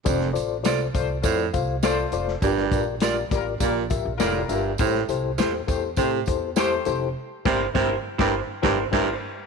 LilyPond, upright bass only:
\new Staff \with { instrumentName = "Upright bass" } { \clef bass \time 4/4 \key f \major \tempo 4 = 101 f,,8 a,,8 c,8 c,8 f,8 c,4 f,,8 | g,,8 bes,,4 a,,8 bes,,8. bes,,16 f,,8 g,,8 | a,,8 c,8 e,8 e,8 a,8 e,4 f,,8 | r8 g,,8 g,,8 r16 g,,8 r16 g,,8 g,,8 r8 | }